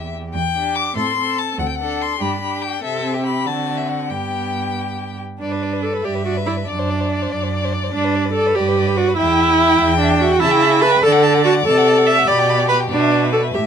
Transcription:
0.00 0.32 E2 medium
0.00 0.30 B3 medium
0.00 0.30 G4 medium
0.00 0.13 E5 medium
0.34 0.86 E2 medium
0.34 0.77 G5 medium
0.55 0.95 D4 soft
0.55 0.95 G4 medium
0.75 0.95 D6 medium
0.96 1.48 A2 medium
0.96 1.17 C4 soft
0.96 1.17 A4 soft
0.96 1.40 C6 medium
1.18 1.58 C4 soft
1.18 1.58 A4 medium
1.38 1.58 A5 medium
1.58 2.11 D2 medium
1.58 1.67 F#5 medium
1.68 1.77 G5 medium
1.75 2.03 F#5 medium
1.79 2.20 D4 soft
1.79 2.20 A4 soft
2.01 2.23 C6 medium
2.20 2.73 G2 medium
2.20 2.41 D4 soft
2.20 2.40 G4 soft
2.20 2.63 B5 medium
2.41 2.83 D4 soft
2.41 2.82 G4 soft
2.62 2.83 G5 medium
2.82 3.47 C3 medium
2.82 3.43 C4 medium
2.82 3.15 A4 medium
2.82 3.25 E5 medium
3.14 3.47 G4 soft
3.25 3.48 B5 medium
3.46 4.12 D3 medium
3.46 4.12 C4 medium
3.46 4.10 F#4 medium
3.46 3.79 A5 medium
3.78 3.90 E5 medium
3.88 4.12 F#5 medium
4.10 5.20 G2 soft
4.10 5.20 B3 soft
4.10 5.18 G4 soft
4.10 5.19 G5 medium
5.40 5.97 G2 medium
5.40 5.84 D4 medium
5.40 6.01 B4 soft
5.40 5.53 D5 soft
5.52 5.64 B4 soft
5.63 5.74 D5 soft
5.73 5.83 B4 soft
5.82 6.06 A4 medium
5.82 5.95 D5 soft
5.93 6.07 B4 soft
6.04 6.60 G2 medium
6.04 6.24 G4 medium
6.04 6.16 D5 soft
6.04 6.69 E5 medium
6.15 6.25 B4 soft
6.25 6.33 F#4 medium
6.25 6.39 D5 soft
6.37 6.49 B4 soft
6.46 6.54 E4 medium
6.46 6.59 D5 soft
6.57 6.67 B4 soft
6.67 7.23 F#2 medium
6.67 7.70 D4 medium
6.67 6.81 D5 medium
6.67 8.55 D5 medium
6.79 6.92 C5 soft
6.90 7.02 D5 soft
7.01 7.10 C5 soft
7.11 7.24 D5 soft
7.22 7.34 C5 soft
7.31 7.86 F#2 medium
7.31 7.44 D5 medium
7.43 7.52 C5 soft
7.53 7.66 D5 medium
7.65 7.75 C5 soft
7.73 7.85 D5 medium
7.84 7.93 C5 soft
7.92 8.48 G2 medium
7.92 8.31 D4 medium
7.92 8.06 D5 medium
8.04 8.17 B4 medium
8.16 8.27 D5 medium
8.25 8.35 B4 soft
8.34 8.56 A4 medium
8.34 8.48 D5 medium
8.46 8.58 B4 medium
8.55 9.10 G2 medium
8.55 8.98 G4 medium
8.55 9.17 B4 medium
8.55 8.70 D5 medium
8.68 8.77 B4 medium
8.78 8.89 D5 medium
8.87 8.99 B4 medium
8.97 9.17 F#4 loud
8.97 9.10 D5 medium
9.09 9.18 B4 medium
9.17 9.72 E2 medium
9.17 9.98 E4 loud
9.17 9.30 E5 medium
9.17 10.39 G5 medium
9.28 9.41 G5 medium
9.40 9.51 E5 medium
9.50 9.59 G5 medium
9.60 9.71 E5 medium
9.70 9.83 G5 medium
9.80 10.34 E2 medium
9.80 9.93 E5 medium
9.91 10.00 G5 medium
9.99 10.22 D4 medium
9.99 10.12 E5 medium
10.11 10.23 G5 medium
10.20 10.41 F#4 loud
10.20 10.33 E5 medium
10.32 10.40 G5 medium
10.40 10.96 C#3 medium
10.40 10.83 E4 loud
10.40 11.02 E5 medium
10.40 10.52 A5 medium
10.51 10.62 G5 medium
10.61 10.73 A5 medium
10.72 10.81 G5 medium
10.81 11.04 B4 loud
10.81 10.93 A5 medium
10.91 11.03 G5 medium
11.02 11.58 D3 medium
11.02 11.44 A4 medium
11.02 12.25 D5 medium
11.02 11.14 A5 medium
11.12 11.25 F#5 medium
11.23 11.36 A5 medium
11.34 11.44 F#5 medium
11.44 11.52 F#4 loud
11.44 11.57 A5 medium
11.55 11.66 F#5 medium
11.65 12.21 C3 medium
11.65 12.08 A4 loud
11.65 11.79 A5 medium
11.78 11.89 F#5 medium
11.87 11.99 A5 medium
11.98 12.07 F#5 medium
12.07 12.29 E5 loud
12.07 12.20 A5 medium
12.18 12.28 F#5 medium
12.27 12.83 B2 medium
12.27 12.92 G4 medium
12.27 12.68 D5 medium
12.27 12.41 B5 medium
12.39 12.51 G5 medium
12.49 12.61 B5 medium
12.60 12.69 G5 medium
12.68 12.76 B4 loud
12.68 12.82 B5 medium
12.80 12.90 G5 medium
12.90 13.47 B2 medium
12.90 13.32 D4 loud
12.90 13.56 B4 medium
12.90 13.02 D5 medium
13.01 13.12 E5 medium
13.11 13.24 D5 medium
13.22 13.32 E5 soft
13.33 13.41 A4 medium
13.33 13.45 D5 medium
13.44 13.53 E5 soft
13.54 13.67 A2 medium
13.54 13.62 G4 medium
13.54 13.67 E5 medium

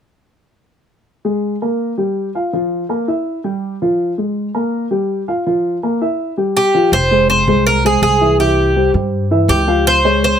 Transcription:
1.25 1.55 G#3 medium
1.25 1.55 G#4 medium
1.62 1.92 A#3 medium
1.62 1.92 A#4 medium
1.98 2.28 G3 medium
1.98 2.28 G4 medium
2.35 2.50 F4 medium
2.35 2.50 F5 medium
2.53 2.83 F3 medium
2.53 2.83 F4 medium
2.89 3.04 A#3 medium
2.89 3.05 A#4 medium
3.08 3.38 E4 medium
3.08 3.38 E5 medium
3.44 3.74 G3 medium
3.44 3.75 G4 medium
3.82 4.12 F3 medium
3.82 4.12 F4 medium
4.18 4.48 G#3 medium
4.18 4.48 G#4 medium
4.54 4.85 A#3 medium
4.54 4.85 A#4 medium
4.91 5.21 G3 medium
4.91 5.21 G4 medium
5.28 5.43 F4 medium
5.28 5.43 F5 medium
5.46 5.76 F3 medium
5.46 5.76 F4 medium
5.83 5.98 A#3 medium
5.83 5.98 A#4 medium
6.01 6.31 E4 medium
6.01 6.31 E5 medium
6.37 6.67 G3 medium
6.37 6.68 G4 medium
6.57 6.93 G4 medium
6.74 6.89 F3 medium
6.74 6.89 F4 medium
6.92 7.43 F1 medium
6.92 7.27 C5 medium
7.11 7.41 G#3 medium
7.11 7.41 G#4 medium
7.11 7.41 C5 medium
7.30 7.66 C5 medium
7.47 7.98 C2 medium
7.47 7.78 G#3 medium
7.47 7.78 G#4 medium
7.47 7.78 C5 medium
7.67 7.85 A#4 medium
7.85 8.14 G#3 medium
7.85 8.14 G#4 medium
7.85 8.01 G#4 medium
7.85 8.15 C5 medium
8.02 8.88 C2 medium
8.02 8.36 G#4 medium
8.21 8.36 E3 medium
8.21 8.36 E4 medium
8.21 8.36 E5 medium
8.39 8.69 E3 medium
8.39 8.69 E4 medium
8.39 8.90 G4 medium
8.39 8.69 E5 medium
8.76 8.91 G3 medium
8.76 8.91 G4 medium
8.76 8.91 C5 medium
8.94 9.45 G2 medium
8.94 9.24 G3 medium
8.94 9.24 G4 medium
8.94 9.24 C5 medium
9.31 9.61 E3 medium
9.31 9.61 E4 medium
9.31 9.61 E5 medium
9.48 10.34 C#2 medium
9.48 9.87 G4 medium
9.67 9.97 F3 medium
9.67 9.97 F4 medium
9.67 9.97 F5 medium
9.87 10.23 C5 loud
10.04 10.34 G#3 medium
10.04 10.34 G#4 medium
10.04 10.34 C#5 medium
10.24 10.39 C5 medium

